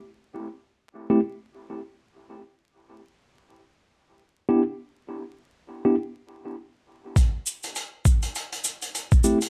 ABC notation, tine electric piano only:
X:1
M:4/4
L:1/16
Q:"Swing 16ths" 1/4=101
K:Am
V:1 name="Tine electric piano"
z6 z [A,CEG] z8 | z12 z2 [B,DEG] z | z6 z [B,DEG] z8 | z12 z2 [A,CEG] z |]